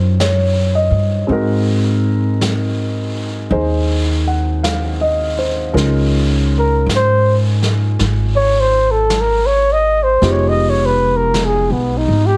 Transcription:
Already playing: F#2 F#3 C#4 D#4 F4 A#4 C5
0.20 C#5, brush sweep, snare, hi-hat pedal
0.75 D#5
0.91 G2
1.27 G#2 G#3 C4 D#4 F#4, brush sweep
1.32 A#4
2.41 brush sweep, snare, hi-hat pedal
3.50 D#2 D#4 G#4 C5, brush sweep
4.27 F#5
4.63 F5, brush sweep, snare, hi-hat pedal
5.01 D#5
5.39 C5
5.73 C#2 G#3 C#4 D#4 F4 A#4, brush sweep, snare
6.59 A#4
6.86 G#2, brush sweep, snare, hi-hat pedal
6.96 C5
7.62 snare
7.99 G#1, brush sweep, snare
8.36 C#5
8.60 C5
8.91 A4
9.10 brush sweep, snare, hi-hat pedal
9.21 A#4
9.46 C#5
9.73 D#5
10.03 C5
10.21 F1 G#3 B3 D#4 F4 G4, brush sweep, snare
10.32 C#5
10.49 D#5
10.70 C#5
10.86 B4
11.17 A#4
11.34 brush sweep, snare, hi-hat pedal
11.45 G#4
11.70 B1 B3
11.97 D#4
12.08 G#1
12.26 G4

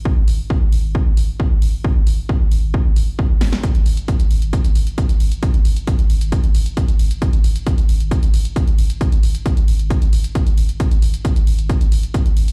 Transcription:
0.05 kick
0.17 G#1
0.28 G#1, open hi-hat
0.50 kick
0.62 G#1
0.72 G#1, open hi-hat
0.84 G#1
0.95 kick
1.06 G#1
1.17 G#1, open hi-hat
1.40 kick
1.51 G#1
1.62 G#1, open hi-hat
1.84 kick
1.96 G#1
2.07 G#1, open hi-hat
2.29 kick
2.41 G#1
2.52 G#1, open hi-hat
2.63 G#1
2.74 kick
2.85 G#1
2.96 G#1, open hi-hat
3.19 kick
3.30 G#1
3.41 G#1, snare, open hi-hat
3.53 snare
3.63 kick, closed hi-hat
3.75 G#1, closed hi-hat
3.86 G#1, open hi-hat
3.97 closed hi-hat
4.08 kick, closed hi-hat
4.20 G#1, closed hi-hat
4.31 G#1, open hi-hat
4.42 G#1, closed hi-hat
4.53 kick, closed hi-hat
4.64 G#1, closed hi-hat
4.75 G#1, open hi-hat
4.87 closed hi-hat
4.98 kick, closed hi-hat
5.09 G#1, closed hi-hat
5.20 G#1, open hi-hat
5.32 closed hi-hat
5.43 kick, closed hi-hat
5.54 G#1, closed hi-hat
5.65 G#1, open hi-hat
5.76 closed hi-hat
5.87 kick, closed hi-hat
5.99 G#1, closed hi-hat
6.10 G#1, open hi-hat
6.21 G#1, closed hi-hat
6.32 kick, closed hi-hat
6.44 G#1, closed hi-hat
6.55 G#1, open hi-hat
6.66 closed hi-hat
6.77 kick, closed hi-hat
6.88 G#1, closed hi-hat
6.99 G#1, open hi-hat
7.11 closed hi-hat
7.22 kick, closed hi-hat
7.33 G#1, closed hi-hat
7.44 G#1, open hi-hat
7.56 closed hi-hat
7.67 kick, closed hi-hat
7.78 G#1, closed hi-hat
7.89 G#1, open hi-hat
8.00 G#1, closed hi-hat
8.11 kick, closed hi-hat
8.23 G#1, closed hi-hat
8.34 G#1, open hi-hat
8.45 closed hi-hat
8.56 kick, closed hi-hat
8.68 G#1, closed hi-hat
8.78 G#1, open hi-hat
8.90 closed hi-hat
9.01 kick, closed hi-hat
9.12 G#1, closed hi-hat
9.23 G#1, open hi-hat
9.35 closed hi-hat
9.46 kick, closed hi-hat
9.57 G#1, closed hi-hat
9.68 G#1, open hi-hat
9.79 G#1, closed hi-hat
9.90 kick, closed hi-hat
10.02 G#1, closed hi-hat
10.13 G#1, open hi-hat
10.24 closed hi-hat
10.35 kick, closed hi-hat
10.47 G#1, closed hi-hat
10.58 G#1, open hi-hat
10.69 closed hi-hat
10.80 kick, closed hi-hat
10.91 G#1, closed hi-hat
11.02 G#1, open hi-hat
11.14 closed hi-hat
11.25 kick, closed hi-hat
11.36 G#1, closed hi-hat
11.47 G#1, open hi-hat
11.59 G#1, closed hi-hat
11.70 kick, closed hi-hat
11.81 G#1, closed hi-hat
11.92 G#1, open hi-hat
12.03 closed hi-hat
12.14 kick, closed hi-hat
12.26 G#1, closed hi-hat
12.37 G#1, open hi-hat
12.48 closed hi-hat

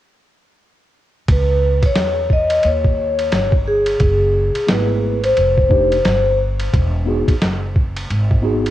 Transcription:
1.28 C#2 B4, kick, ride
1.82 C#5, muted upright bass stroke, kick, ride
1.95 E2, snare, hi-hat pedal, ride
2.30 D#5, kick
2.50 ride
2.63 D#2 C#5, ride
2.85 kick
3.19 ride
3.32 G1 C#5, snare, hi-hat pedal, ride
3.52 kick
3.68 G#4
3.86 ride
4.00 F#1, kick, ride
4.55 ride
4.67 G#1 A3 B3 E4 G#4 B4, snare, hi-hat pedal, ride
5.23 C5, ride
5.37 F1, ride
5.58 kick
5.69 A3 D4 D#4 G4, kick
5.92 ride
6.05 G1, snare, hi-hat pedal, ride
6.60 ride
6.73 E1, kick, ride
7.05 B3 D#4 F#4 G#4
7.28 muted upright bass stroke, kick, ride
7.42 F#1, snare, hi-hat pedal, ride
7.76 kick
7.97 ride
8.10 G#1, ride
8.31 kick
8.42 B3 D#4 F#4 G#4
8.66 ride

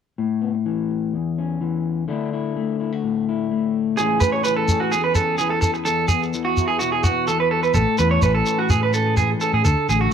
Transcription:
0.18 A2
0.42 B3
0.55 muted clean electric guitar stroke
0.66 E3
0.91 muted clean electric guitar stroke
1.14 E2
1.38 C#4
1.61 E3
2.08 D3 A3 D4 E4
2.33 E4
2.57 A3
2.80 E4
2.93 F#4
3.04 A2
3.29 E4
3.51 A3
3.97 A2 E3 G#3 C#4 G#4, shekere
4.02 G#4
4.20 C#4 B4, shekere
4.32 C#5
4.44 E3 B4, shekere
4.56 A4
4.68 G#4, shekere
4.80 F#4
4.92 E2 G#4, shekere
5.04 B4
5.15 C#4 A4, shekere
5.38 E3 G#4, shekere
5.50 A4
5.61 A4, shekere
5.74 muted clean electric guitar stroke, shekere
5.85 E2 A4, shekere
6.08 B3 G#4, shekere
6.23 shekere
6.34 E3, shekere
6.45 F#4
6.57 E4, shekere
6.68 G#4
6.79 B2 F#4, shekere
6.92 G#4
7.04 B3 F#4, shekere
7.28 E3 A4, shekere
7.40 B4
7.51 A4
7.63 B4, shekere
7.74 A1 A2 A4, shekere
7.98 E2 E3 B4, shekere
8.11 C#5
8.22 A1 C#4 B4, shekere
8.35 A4
8.46 B4, shekere
8.59 F#4
8.70 A2 G#3 G#4, shekere
8.83 B4
8.93 C#4 A4, shekere
9.17 E3 G#4, shekere
9.41 C#4 A4, shekere
9.53 A2 G#4
9.65 D2 D3 A4, shekere
9.89 A1 A3 G#4, shekere
10.01 F#4

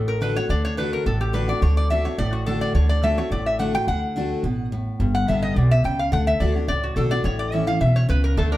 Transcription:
Already playing: A1 A2
0.08 A#4
0.21 D3 A3 D4 F#4 B4
0.35 D4 F#4 C#5
0.49 D2 D3 D5
0.65 C#5
0.77 D3 A3 D4 F#4 B4
0.93 A#4
1.06 A1 A2 A4
1.21 G4
1.33 D3 A3 D4 F#4 B4
1.48 D4 F#4 D5
1.62 D2 D3 C#5
1.77 D5
1.90 D3 A3 D4 F#4 E5
2.04 D4 F#4 C#5
2.18 A1 A2 D5
2.33 F#4
2.46 D3 A3 D4 F#4 A4
2.61 D5
2.74 D2 D3 C#5
2.89 D5
3.03 D3 A3 D4 F#4 E5
3.17 D4 F#4 C#5
3.31 A1 A2 D5
3.46 E5
3.59 D3 A3 D4 F#4 F#5
3.74 D4 F#4 G5
3.87 D2 D3 F#5
4.16 D3 A3 D4 F#4
4.43 A1 B2
4.72 A2
5.00 G1 G2
5.15 F#5
5.28 A1 D3 G3 B3 G4 E5
5.42 D#5
5.56 B1 B2 D5
5.71 E5
5.84 C#2 C#3 G5
5.99 F5
6.12 D2 D3 F#5
6.27 E5
6.40 D2 D3 A3 D4 F#4 D5
6.54 D4 F#4 C#5
6.68 C#2 A2 D5
6.83 F#4
6.96 B1 D3 A3 D4 F#4 A4
7.11 D4 F#4 D5
7.24 A1 A2 C#5
7.39 D5
7.52 E3 A3 C#4 E4 E5
7.66 C#4 E4 F5
7.80 B1 B2 E5
7.96 C#5
8.09 C#2 C#3 B4
8.24 A#4
8.37 D2 D3 A3 A4
8.52 D4 A#4

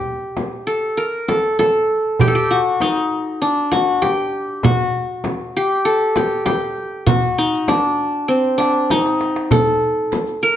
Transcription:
Already playing: G4
0.37 darbuka tek, frame drum
0.53 darbuka ka
0.67 A4, darbuka ka
0.97 A#4, darbuka ka
1.28 A4, darbuka tek, frame drum
1.59 A4, darbuka tek, frame drum
1.90 darbuka ka
2.05 darbuka ka
2.19 G4, darbuka dum, frame drum
2.28 A4
2.35 G4
2.51 F#4
2.80 D#4, darbuka tek, frame drum
2.96 darbuka ka
3.11 darbuka ka
3.41 D4, darbuka ka
3.72 F#4, darbuka tek, frame drum
4.02 G4, darbuka tek, frame drum
4.33 darbuka ka
4.48 darbuka ka
4.63 F#4, frame drum, darbuka dum
5.24 darbuka tek, frame drum
5.55 G4, darbuka ka
5.85 A4, darbuka ka
6.16 G4, darbuka tek, frame drum
6.46 G4, darbuka tek, frame drum
6.77 darbuka ka
6.92 darbuka ka
7.07 F#4, frame drum, darbuka dum
7.38 D#4
7.68 D4, darbuka tek, frame drum
7.83 darbuka ka
7.99 darbuka ka
8.28 C4
8.45 darbuka ka
8.58 D4, darbuka tek
8.90 D#4, darbuka tek, frame drum
9.06 darbuka ka
9.21 darbuka tek
9.36 darbuka ka
9.51 A4, riq, frame drum, darbuka dum
9.67 riq
10.12 riq, darbuka tek, frame drum
10.27 riq, darbuka ka
10.42 A#4, riq, darbuka ka

